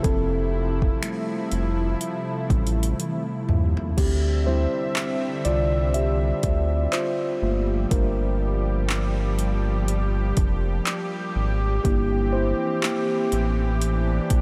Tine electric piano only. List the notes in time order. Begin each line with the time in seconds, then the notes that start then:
0.03 C4 A4
1.02 G3 A3 E4
2.50 G3 A3 E4
3.97 C4 G4
4.47 G3 C4 E4 C5
5.45 F4 D5
5.94 G4 E5
6.93 F4 C5
7.42 A3 A#3 F4
7.91 D4 A#4
11.84 A#3 D4 E4 G4
12.33 E4 C5
12.82 A#3 G4